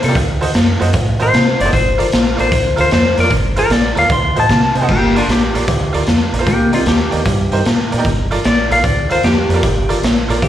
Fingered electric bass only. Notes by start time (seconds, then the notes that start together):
0.04 C3
0.15 D2
0.55 F#2
0.82 F#2
0.94 A2
1.21 A2
1.34 C3
1.60 F#1
1.73 G1
2.14 A#1
2.39 A#1
2.52 D2
2.79 D2
2.93 F2
3.18 F2
3.30 G1
3.70 A#1
3.97 D#2
4.09 D2
4.37 A2
4.50 C3
4.75 C3
4.89 G1
5.28 A#1
5.55 A#1
5.68 D2
5.95 D2
6.08 F2
6.33 A#1
6.47 C2
6.86 D#2
7.14 D#2
7.26 G2
7.53 G2
7.66 A#2
7.94 A#2
8.05 G1
8.45 A#1
8.71 A#1
8.84 D2
9.11 D2
9.24 F2
9.49 F2
9.63 G1
10.03 A#1
10.29 A#1
10.42 D2